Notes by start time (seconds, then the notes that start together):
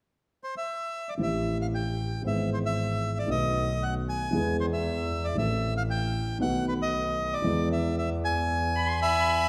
0.44 C5
0.57 E5
1.09 D5
1.17 A1 A2 E3 A3 C4 G4
1.23 E5
1.61 F5
1.75 G5
2.22 G#1 G#2 E3 G#3 B3
2.26 G#4 E5
2.54 C5
2.65 E5
3.19 D5
3.26 B1 B2 D#3 A3 B3 F#4
3.31 D#5
3.83 F#5
4.09 G#5
4.32 E2 E3 G#3 B3 G#4
4.60 C5
4.73 E5
5.24 D5
5.35 A1 A2 E3 A3 C4 A4 E5
5.77 F5
5.90 G5
6.39 B1 B2 D#3 A3 B3 F#5
6.43 F#4
6.68 B4
6.82 D#5
7.33 D5
7.44 E2 E3 G#3 B3 G#4
7.72 E5
7.98 E5
8.25 G#5
8.75 B5
8.87 C6
9.01 E5 G#5 B5
9.14 B5